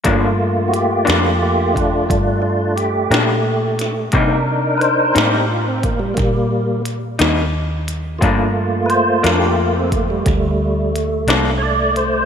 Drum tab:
HH |x-xx-xx-xx-x|x-xx-xx-xx-x|x-xx-xx-xx-x|
SD |---o-----o-o|---o--o--o--|---o--o--o--|
BD |o----oo-----|o----oo-----|o----oo-----|